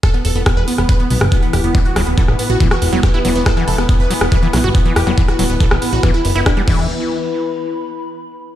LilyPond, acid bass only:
\new Staff \with { instrumentName = "Acid bass" } { \clef bass \time 4/4 \key c \lydian \tempo 4 = 140 r1 | e16 r16 fis16 r16 e16 r8. e16 r8 fis16 r16 e'16 fis16 r16 | e16 e16 r4 fis16 r16 e16 e16 fis16 fis'16 r16 e16 r16 fis16 | e16 r16 fis16 r16 e16 r8. e16 r8 e'16 r16 g16 e8 |
r1 | }